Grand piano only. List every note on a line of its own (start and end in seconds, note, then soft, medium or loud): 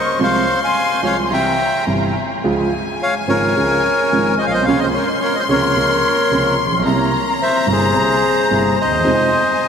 0.19 0.43 C2 medium
0.19 0.43 C3 medium
0.19 0.43 F3 medium
0.19 0.43 G#3 medium
0.19 0.43 F4 medium
1.02 1.26 C2 medium
1.02 1.26 C3 medium
1.02 1.26 F3 soft
1.02 1.26 G#3 soft
1.02 1.26 F4 soft
1.30 1.54 C2 soft
1.30 1.54 C3 soft
1.30 1.54 E3 soft
1.30 1.54 G3 soft
1.30 1.54 E4 soft
1.87 2.11 G1 soft
1.87 2.11 G2 soft
1.87 2.11 C3 soft
1.87 2.11 E3 soft
1.87 2.11 G3 soft
1.87 2.11 E4 soft
2.44 2.68 C#2 medium
2.44 2.68 C#3 medium
2.44 2.68 F3 soft
2.44 2.68 G#3 soft
2.44 2.68 F4 medium
3.28 3.51 G#1 soft
3.28 3.51 G#2 medium
3.28 3.51 C#3 soft
3.28 3.51 F3 soft
3.28 3.51 G#3 soft
3.28 3.51 F4 soft
3.56 3.79 C#2 soft
3.56 3.79 C#3 soft
3.56 3.79 F3 soft
3.56 3.79 G#3 soft
3.56 3.79 F4 soft
4.12 4.35 G#1 soft
4.12 4.35 G#2 soft
4.12 4.35 C#3 soft
4.12 4.35 F3 soft
4.12 4.35 G#3 soft
4.12 4.35 F4 soft
4.47 4.53 A#1 soft
4.53 4.60 B1 soft
4.60 4.66 C2 medium
4.68 4.90 C#2 medium
4.68 4.90 C3 medium
4.68 4.90 C#3 medium
4.68 4.90 F3 medium
4.68 4.90 A#3 medium
4.68 4.90 C#4 medium
5.49 5.71 C#2 medium
5.49 5.71 C3 soft
5.49 5.72 C#3 medium
5.49 5.71 F3 soft
5.49 5.72 A#3 soft
5.49 5.72 C#4 soft
5.76 5.99 C#2 soft
5.76 5.99 C3 soft
5.76 5.99 C#3 soft
5.76 5.99 F3 soft
5.76 5.99 A#3 soft
5.76 5.99 C#4 soft
6.31 6.54 C#2 medium
6.31 6.54 C3 soft
6.31 6.54 C#3 soft
6.31 6.54 F3 soft
6.31 6.54 A#3 soft
6.31 6.54 C#4 soft
6.66 6.72 A1 soft
6.72 6.79 A#1 medium
6.79 6.86 B1 medium
6.85 7.09 C2 medium
6.85 7.09 C3 medium
6.85 7.09 G3 medium
6.85 7.09 A#3 medium
6.85 7.09 E4 medium
7.67 7.91 G1 medium
7.67 7.90 G2 medium
7.67 7.90 C3 soft
7.67 7.91 G3 soft
7.67 7.91 A#3 soft
7.67 7.91 E4 soft
7.94 8.18 C2 soft
7.94 8.18 C3 soft
7.94 8.18 G3 soft
7.94 8.18 A#3 soft
7.94 8.18 E4 soft
8.51 8.74 G1 soft
8.51 8.74 G2 soft
8.51 8.74 C3 soft
8.51 8.74 G3 soft
8.51 8.74 A#3 soft
8.51 8.74 E4 soft
8.85 8.92 D2 soft
8.91 8.98 D#2 medium
8.99 9.06 E2 medium
9.05 9.28 F2 medium
9.05 9.28 C3 medium
9.05 9.29 F3 medium
9.05 9.29 G#3 medium
9.05 9.29 D#4 medium